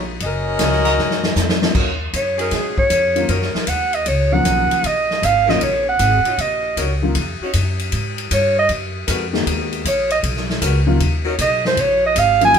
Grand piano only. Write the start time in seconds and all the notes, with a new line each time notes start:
1.62 D#3 F#3 A#3 C#4 F4
3.15 D#3 F#3 A#3 C#4 F4
4.32 D#3 F3 F#3 A#3 C#4
5.48 D#3 F#3 A#3 C#4 F4
7.02 D#3 F#3 A#3 C#4 F4
9.33 D#3 G#3 A#3 B3 F#4
10.87 D#3 F#3 A#3 C#4 F4
12.41 D#3 F#3 A#3 C#4 F4